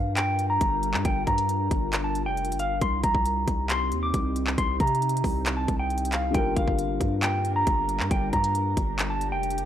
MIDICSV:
0, 0, Header, 1, 6, 480
1, 0, Start_track
1, 0, Key_signature, -2, "minor"
1, 0, Tempo, 441176
1, 1143, Time_signature, 4, 2, 24, 8
1, 10502, End_track
2, 0, Start_track
2, 0, Title_t, "Clean electric guitar"
2, 0, Program_c, 0, 27
2, 0, Note_on_c, 0, 77, 85
2, 140, Note_off_c, 0, 77, 0
2, 180, Note_on_c, 0, 79, 87
2, 520, Note_off_c, 0, 79, 0
2, 542, Note_on_c, 0, 82, 79
2, 1107, Note_off_c, 0, 82, 0
2, 1146, Note_on_c, 0, 79, 81
2, 1353, Note_off_c, 0, 79, 0
2, 1382, Note_on_c, 0, 82, 77
2, 2179, Note_off_c, 0, 82, 0
2, 2221, Note_on_c, 0, 81, 73
2, 2430, Note_off_c, 0, 81, 0
2, 2461, Note_on_c, 0, 79, 84
2, 2800, Note_off_c, 0, 79, 0
2, 2825, Note_on_c, 0, 77, 86
2, 3032, Note_off_c, 0, 77, 0
2, 3065, Note_on_c, 0, 84, 85
2, 3272, Note_off_c, 0, 84, 0
2, 3303, Note_on_c, 0, 82, 83
2, 3980, Note_off_c, 0, 82, 0
2, 4028, Note_on_c, 0, 84, 92
2, 4364, Note_off_c, 0, 84, 0
2, 4381, Note_on_c, 0, 86, 82
2, 4946, Note_off_c, 0, 86, 0
2, 4983, Note_on_c, 0, 84, 89
2, 5191, Note_off_c, 0, 84, 0
2, 5228, Note_on_c, 0, 82, 75
2, 6022, Note_off_c, 0, 82, 0
2, 6058, Note_on_c, 0, 81, 65
2, 6268, Note_off_c, 0, 81, 0
2, 6304, Note_on_c, 0, 79, 80
2, 6642, Note_off_c, 0, 79, 0
2, 6671, Note_on_c, 0, 77, 79
2, 6876, Note_off_c, 0, 77, 0
2, 6905, Note_on_c, 0, 79, 85
2, 7112, Note_off_c, 0, 79, 0
2, 7143, Note_on_c, 0, 77, 84
2, 7820, Note_off_c, 0, 77, 0
2, 7860, Note_on_c, 0, 79, 88
2, 8200, Note_off_c, 0, 79, 0
2, 8225, Note_on_c, 0, 82, 84
2, 8788, Note_off_c, 0, 82, 0
2, 8828, Note_on_c, 0, 79, 82
2, 9034, Note_off_c, 0, 79, 0
2, 9063, Note_on_c, 0, 82, 75
2, 9859, Note_off_c, 0, 82, 0
2, 9901, Note_on_c, 0, 81, 71
2, 10110, Note_off_c, 0, 81, 0
2, 10141, Note_on_c, 0, 79, 88
2, 10480, Note_off_c, 0, 79, 0
2, 10502, End_track
3, 0, Start_track
3, 0, Title_t, "Ambient pad"
3, 0, Program_c, 1, 92
3, 0, Note_on_c, 1, 55, 77
3, 0, Note_on_c, 1, 62, 73
3, 0, Note_on_c, 1, 65, 73
3, 0, Note_on_c, 1, 70, 85
3, 3024, Note_off_c, 1, 55, 0
3, 3024, Note_off_c, 1, 62, 0
3, 3024, Note_off_c, 1, 65, 0
3, 3024, Note_off_c, 1, 70, 0
3, 3062, Note_on_c, 1, 48, 79
3, 3062, Note_on_c, 1, 60, 73
3, 3062, Note_on_c, 1, 63, 73
3, 3062, Note_on_c, 1, 67, 85
3, 6864, Note_off_c, 1, 48, 0
3, 6864, Note_off_c, 1, 60, 0
3, 6864, Note_off_c, 1, 63, 0
3, 6864, Note_off_c, 1, 67, 0
3, 6902, Note_on_c, 1, 55, 80
3, 6902, Note_on_c, 1, 65, 69
3, 6902, Note_on_c, 1, 70, 89
3, 6903, Note_on_c, 1, 62, 72
3, 8803, Note_off_c, 1, 65, 0
3, 8821, Note_on_c, 1, 67, 73
3, 10502, Note_off_c, 1, 55, 0
3, 10502, Note_off_c, 1, 62, 0
3, 10502, Note_off_c, 1, 67, 0
3, 10502, Note_off_c, 1, 70, 0
3, 10502, End_track
4, 0, Start_track
4, 0, Title_t, "Grand piano"
4, 0, Program_c, 2, 0
4, 6861, Note_on_c, 2, 50, 68
4, 6882, Note_on_c, 2, 55, 62
4, 6902, Note_on_c, 2, 58, 59
4, 6923, Note_on_c, 2, 65, 59
4, 6943, Note_on_c, 2, 70, 77
4, 7089, Control_c, 2, 64, 127
4, 10502, Note_off_c, 2, 50, 0
4, 10502, Note_off_c, 2, 55, 0
4, 10502, Note_off_c, 2, 58, 0
4, 10502, Note_off_c, 2, 65, 0
4, 10502, Note_off_c, 2, 70, 0
4, 10502, End_track
5, 0, Start_track
5, 0, Title_t, "808-style bass"
5, 0, Program_c, 3, 38
5, 0, Note_on_c, 3, 43, 103
5, 634, Note_off_c, 3, 43, 0
5, 664, Note_on_c, 3, 31, 112
5, 1023, Note_on_c, 3, 43, 101
5, 1039, Note_off_c, 3, 31, 0
5, 1137, Note_off_c, 3, 43, 0
5, 1142, Note_on_c, 3, 31, 114
5, 1373, Note_off_c, 3, 31, 0
5, 1383, Note_on_c, 3, 43, 99
5, 1844, Note_off_c, 3, 43, 0
5, 1861, Note_on_c, 3, 31, 109
5, 2463, Note_on_c, 3, 29, 101
5, 2479, Note_off_c, 3, 31, 0
5, 2763, Note_on_c, 3, 31, 100
5, 2779, Note_off_c, 3, 29, 0
5, 3048, Note_off_c, 3, 31, 0
5, 3062, Note_on_c, 3, 36, 116
5, 3293, Note_off_c, 3, 36, 0
5, 3303, Note_on_c, 3, 36, 107
5, 3764, Note_off_c, 3, 36, 0
5, 3782, Note_on_c, 3, 36, 103
5, 4263, Note_on_c, 3, 39, 99
5, 4279, Note_off_c, 3, 36, 0
5, 4491, Note_off_c, 3, 39, 0
5, 4504, Note_on_c, 3, 36, 111
5, 4964, Note_off_c, 3, 36, 0
5, 4983, Note_on_c, 3, 36, 115
5, 5213, Note_off_c, 3, 36, 0
5, 5223, Note_on_c, 3, 48, 100
5, 5684, Note_off_c, 3, 48, 0
5, 5702, Note_on_c, 3, 36, 107
5, 6163, Note_off_c, 3, 36, 0
5, 6183, Note_on_c, 3, 36, 108
5, 6874, Note_off_c, 3, 36, 0
5, 6903, Note_on_c, 3, 31, 120
5, 7133, Note_off_c, 3, 31, 0
5, 7143, Note_on_c, 3, 31, 104
5, 7256, Note_off_c, 3, 31, 0
5, 7263, Note_on_c, 3, 31, 107
5, 7609, Note_off_c, 3, 31, 0
5, 7622, Note_on_c, 3, 43, 105
5, 8314, Note_off_c, 3, 43, 0
5, 8344, Note_on_c, 3, 31, 106
5, 8703, Note_on_c, 3, 43, 101
5, 8719, Note_off_c, 3, 31, 0
5, 8817, Note_off_c, 3, 43, 0
5, 8823, Note_on_c, 3, 31, 114
5, 9053, Note_off_c, 3, 31, 0
5, 9062, Note_on_c, 3, 43, 102
5, 9523, Note_off_c, 3, 43, 0
5, 9542, Note_on_c, 3, 31, 107
5, 10142, Note_on_c, 3, 29, 97
5, 10159, Note_off_c, 3, 31, 0
5, 10443, Note_on_c, 3, 31, 100
5, 10459, Note_off_c, 3, 29, 0
5, 10502, Note_off_c, 3, 31, 0
5, 10502, End_track
6, 0, Start_track
6, 0, Title_t, "Drums"
6, 182, Note_on_c, 9, 39, 127
6, 182, Note_on_c, 9, 42, 77
6, 291, Note_off_c, 9, 39, 0
6, 291, Note_off_c, 9, 42, 0
6, 422, Note_on_c, 9, 42, 60
6, 531, Note_off_c, 9, 42, 0
6, 663, Note_on_c, 9, 36, 103
6, 663, Note_on_c, 9, 42, 78
6, 772, Note_off_c, 9, 36, 0
6, 772, Note_off_c, 9, 42, 0
6, 902, Note_on_c, 9, 42, 67
6, 1011, Note_off_c, 9, 42, 0
6, 1023, Note_on_c, 9, 39, 99
6, 1131, Note_off_c, 9, 39, 0
6, 1142, Note_on_c, 9, 36, 119
6, 1142, Note_on_c, 9, 42, 76
6, 1251, Note_off_c, 9, 36, 0
6, 1251, Note_off_c, 9, 42, 0
6, 1382, Note_on_c, 9, 36, 100
6, 1382, Note_on_c, 9, 42, 49
6, 1491, Note_off_c, 9, 36, 0
6, 1491, Note_off_c, 9, 42, 0
6, 1501, Note_on_c, 9, 42, 81
6, 1610, Note_off_c, 9, 42, 0
6, 1622, Note_on_c, 9, 42, 76
6, 1730, Note_off_c, 9, 42, 0
6, 1861, Note_on_c, 9, 36, 101
6, 1862, Note_on_c, 9, 42, 76
6, 1970, Note_off_c, 9, 36, 0
6, 1971, Note_off_c, 9, 42, 0
6, 2101, Note_on_c, 9, 39, 126
6, 2101, Note_on_c, 9, 42, 77
6, 2210, Note_off_c, 9, 39, 0
6, 2210, Note_off_c, 9, 42, 0
6, 2342, Note_on_c, 9, 42, 61
6, 2450, Note_off_c, 9, 42, 0
6, 2582, Note_on_c, 9, 42, 50
6, 2662, Note_off_c, 9, 42, 0
6, 2662, Note_on_c, 9, 42, 65
6, 2741, Note_off_c, 9, 42, 0
6, 2741, Note_on_c, 9, 42, 80
6, 2822, Note_off_c, 9, 42, 0
6, 2822, Note_on_c, 9, 42, 71
6, 2930, Note_off_c, 9, 42, 0
6, 3062, Note_on_c, 9, 42, 76
6, 3063, Note_on_c, 9, 36, 115
6, 3171, Note_off_c, 9, 36, 0
6, 3171, Note_off_c, 9, 42, 0
6, 3302, Note_on_c, 9, 42, 76
6, 3303, Note_on_c, 9, 36, 98
6, 3411, Note_off_c, 9, 42, 0
6, 3412, Note_off_c, 9, 36, 0
6, 3422, Note_on_c, 9, 36, 98
6, 3531, Note_off_c, 9, 36, 0
6, 3542, Note_on_c, 9, 42, 78
6, 3650, Note_off_c, 9, 42, 0
6, 3781, Note_on_c, 9, 42, 74
6, 3782, Note_on_c, 9, 36, 100
6, 3890, Note_off_c, 9, 36, 0
6, 3890, Note_off_c, 9, 42, 0
6, 4022, Note_on_c, 9, 39, 127
6, 4022, Note_on_c, 9, 42, 77
6, 4131, Note_off_c, 9, 39, 0
6, 4131, Note_off_c, 9, 42, 0
6, 4262, Note_on_c, 9, 42, 59
6, 4371, Note_off_c, 9, 42, 0
6, 4503, Note_on_c, 9, 42, 79
6, 4504, Note_on_c, 9, 36, 104
6, 4612, Note_off_c, 9, 42, 0
6, 4613, Note_off_c, 9, 36, 0
6, 4743, Note_on_c, 9, 42, 72
6, 4852, Note_off_c, 9, 42, 0
6, 4863, Note_on_c, 9, 39, 101
6, 4972, Note_off_c, 9, 39, 0
6, 4983, Note_on_c, 9, 36, 121
6, 4983, Note_on_c, 9, 42, 78
6, 5092, Note_off_c, 9, 36, 0
6, 5092, Note_off_c, 9, 42, 0
6, 5222, Note_on_c, 9, 42, 47
6, 5223, Note_on_c, 9, 36, 95
6, 5302, Note_off_c, 9, 42, 0
6, 5302, Note_on_c, 9, 42, 54
6, 5332, Note_off_c, 9, 36, 0
6, 5382, Note_off_c, 9, 42, 0
6, 5382, Note_on_c, 9, 42, 60
6, 5463, Note_off_c, 9, 42, 0
6, 5463, Note_on_c, 9, 42, 67
6, 5542, Note_off_c, 9, 42, 0
6, 5542, Note_on_c, 9, 42, 71
6, 5622, Note_off_c, 9, 42, 0
6, 5622, Note_on_c, 9, 42, 83
6, 5702, Note_on_c, 9, 36, 105
6, 5703, Note_on_c, 9, 46, 54
6, 5731, Note_off_c, 9, 42, 0
6, 5811, Note_off_c, 9, 36, 0
6, 5811, Note_off_c, 9, 46, 0
6, 5942, Note_on_c, 9, 39, 122
6, 5942, Note_on_c, 9, 42, 76
6, 6051, Note_off_c, 9, 39, 0
6, 6051, Note_off_c, 9, 42, 0
6, 6183, Note_on_c, 9, 36, 101
6, 6183, Note_on_c, 9, 42, 62
6, 6292, Note_off_c, 9, 36, 0
6, 6292, Note_off_c, 9, 42, 0
6, 6423, Note_on_c, 9, 42, 48
6, 6503, Note_off_c, 9, 42, 0
6, 6503, Note_on_c, 9, 42, 65
6, 6583, Note_off_c, 9, 42, 0
6, 6583, Note_on_c, 9, 42, 80
6, 6663, Note_off_c, 9, 42, 0
6, 6663, Note_on_c, 9, 39, 102
6, 6663, Note_on_c, 9, 42, 69
6, 6771, Note_off_c, 9, 42, 0
6, 6772, Note_off_c, 9, 39, 0
6, 6902, Note_on_c, 9, 42, 75
6, 6903, Note_on_c, 9, 36, 120
6, 7011, Note_off_c, 9, 42, 0
6, 7012, Note_off_c, 9, 36, 0
6, 7143, Note_on_c, 9, 36, 97
6, 7143, Note_on_c, 9, 42, 76
6, 7251, Note_off_c, 9, 42, 0
6, 7252, Note_off_c, 9, 36, 0
6, 7263, Note_on_c, 9, 36, 91
6, 7371, Note_off_c, 9, 36, 0
6, 7383, Note_on_c, 9, 42, 77
6, 7492, Note_off_c, 9, 42, 0
6, 7622, Note_on_c, 9, 36, 100
6, 7624, Note_on_c, 9, 42, 75
6, 7731, Note_off_c, 9, 36, 0
6, 7733, Note_off_c, 9, 42, 0
6, 7862, Note_on_c, 9, 39, 127
6, 7862, Note_on_c, 9, 42, 76
6, 7971, Note_off_c, 9, 39, 0
6, 7971, Note_off_c, 9, 42, 0
6, 8103, Note_on_c, 9, 42, 61
6, 8212, Note_off_c, 9, 42, 0
6, 8343, Note_on_c, 9, 42, 79
6, 8344, Note_on_c, 9, 36, 104
6, 8452, Note_off_c, 9, 42, 0
6, 8453, Note_off_c, 9, 36, 0
6, 8582, Note_on_c, 9, 42, 69
6, 8691, Note_off_c, 9, 42, 0
6, 8703, Note_on_c, 9, 39, 96
6, 8812, Note_off_c, 9, 39, 0
6, 8822, Note_on_c, 9, 42, 76
6, 8823, Note_on_c, 9, 36, 115
6, 8931, Note_off_c, 9, 42, 0
6, 8932, Note_off_c, 9, 36, 0
6, 9062, Note_on_c, 9, 42, 49
6, 9063, Note_on_c, 9, 36, 96
6, 9171, Note_off_c, 9, 42, 0
6, 9172, Note_off_c, 9, 36, 0
6, 9182, Note_on_c, 9, 42, 82
6, 9291, Note_off_c, 9, 42, 0
6, 9302, Note_on_c, 9, 42, 79
6, 9411, Note_off_c, 9, 42, 0
6, 9542, Note_on_c, 9, 36, 98
6, 9542, Note_on_c, 9, 42, 77
6, 9651, Note_off_c, 9, 36, 0
6, 9651, Note_off_c, 9, 42, 0
6, 9782, Note_on_c, 9, 39, 126
6, 9782, Note_on_c, 9, 42, 76
6, 9891, Note_off_c, 9, 39, 0
6, 9891, Note_off_c, 9, 42, 0
6, 10022, Note_on_c, 9, 42, 62
6, 10131, Note_off_c, 9, 42, 0
6, 10262, Note_on_c, 9, 42, 49
6, 10341, Note_off_c, 9, 42, 0
6, 10341, Note_on_c, 9, 42, 65
6, 10422, Note_off_c, 9, 42, 0
6, 10422, Note_on_c, 9, 42, 79
6, 10502, Note_off_c, 9, 42, 0
6, 10502, End_track
0, 0, End_of_file